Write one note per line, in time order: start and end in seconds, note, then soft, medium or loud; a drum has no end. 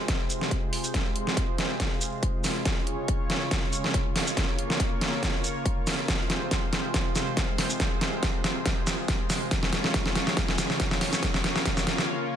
0.00 2.62 C3 medium
0.00 4.33 G#3 medium
0.00 9.47 F4 medium
0.00 2.62 C5 medium
0.08 kick loud
0.08 snare medium
0.08 closed hi-hat medium
0.30 closed hi-hat soft
0.30 shaker medium
0.41 snare soft
0.51 kick medium
0.51 closed hi-hat medium
0.73 open hi-hat medium
0.84 shaker medium
0.94 kick loud
0.94 snare medium
0.94 closed hi-hat medium
1.16 closed hi-hat medium
1.27 snare soft
1.37 kick medium
1.37 closed hi-hat medium
1.58 snare medium
1.58 closed hi-hat medium
1.80 kick loud
1.80 snare medium
1.80 closed hi-hat medium
2.01 closed hi-hat medium
2.01 shaker medium
2.23 kick loud
2.23 closed hi-hat medium
2.44 snare medium
2.44 open hi-hat medium
2.44 shaker medium
2.65 6.05 C#3 medium
2.65 4.35 C#5 medium
2.65 kick loud
2.65 snare medium
2.65 closed hi-hat medium
2.87 closed hi-hat medium
3.08 kick medium
3.08 closed hi-hat medium
3.30 snare medium
3.30 closed hi-hat medium
3.51 kick loud
3.51 snare medium
3.51 closed hi-hat medium
3.73 closed hi-hat medium
3.73 shaker medium
3.84 snare medium
3.94 kick loud
3.94 closed hi-hat medium
4.16 snare medium
4.16 open hi-hat medium
4.27 shaker medium
4.37 6.07 A#3 medium
4.37 6.07 C#5 medium
4.37 kick loud
4.37 snare medium
4.37 closed hi-hat medium
4.59 closed hi-hat medium
4.70 snare medium
4.80 kick medium
4.80 closed hi-hat medium
5.01 snare medium
5.01 closed hi-hat medium
5.23 kick loud
5.23 snare medium
5.23 closed hi-hat medium
5.44 closed hi-hat soft
5.44 shaker medium
5.66 kick loud
5.66 closed hi-hat medium
5.87 snare medium
5.87 open hi-hat medium
5.87 shaker medium
6.08 9.48 C3 medium
6.08 11.19 G#3 medium
6.08 9.48 C5 medium
6.08 kick loud
6.08 snare medium
6.08 closed hi-hat medium
6.30 snare medium
6.30 closed hi-hat medium
6.51 kick medium
6.51 snare medium
6.51 closed hi-hat medium
6.73 snare medium
6.73 closed hi-hat medium
6.94 kick loud
6.94 snare medium
6.94 closed hi-hat medium
7.16 snare medium
7.16 closed hi-hat soft
7.16 shaker medium
7.37 kick loud
7.37 snare medium
7.37 closed hi-hat medium
7.58 snare medium
7.58 open hi-hat medium
7.70 shaker medium
7.80 kick loud
7.80 snare medium
7.80 closed hi-hat medium
8.01 snare medium
8.01 closed hi-hat medium
8.23 kick medium
8.23 snare medium
8.23 closed hi-hat medium
8.44 snare medium
8.44 closed hi-hat soft
8.66 kick loud
8.66 snare medium
8.66 closed hi-hat medium
8.87 snare medium
8.87 closed hi-hat soft
8.87 shaker medium
9.08 kick loud
9.08 snare medium
9.08 closed hi-hat medium
9.30 snare medium
9.30 open hi-hat medium
9.30 shaker medium
9.51 12.36 C#3 medium
9.51 11.21 F4 medium
9.51 12.36 C#5 medium
9.51 kick loud
9.51 snare medium
9.51 closed hi-hat medium
9.63 snare medium
9.73 snare medium
9.73 closed hi-hat medium
9.84 snare medium
9.94 kick medium
9.94 snare medium
9.94 closed hi-hat medium
10.06 snare medium
10.16 snare medium
10.16 closed hi-hat soft
10.27 snare medium
10.37 kick loud
10.37 snare loud
10.37 closed hi-hat medium
10.48 snare medium
10.58 snare loud
10.58 closed hi-hat medium
10.58 shaker medium
10.70 snare medium
10.80 kick loud
10.80 snare loud
10.80 closed hi-hat medium
10.91 snare medium
11.01 snare loud
11.01 open hi-hat loud
11.13 snare medium
11.13 shaker medium
11.23 12.36 A#3 medium
11.23 12.36 F4 medium
11.23 kick loud
11.23 snare loud
11.23 closed hi-hat medium
11.34 snare medium
11.44 snare loud
11.44 closed hi-hat medium
11.56 snare medium
11.65 kick medium
11.65 snare loud
11.65 closed hi-hat medium
11.77 snare medium
11.77 shaker medium
11.87 snare loud
11.87 closed hi-hat medium
11.98 snare medium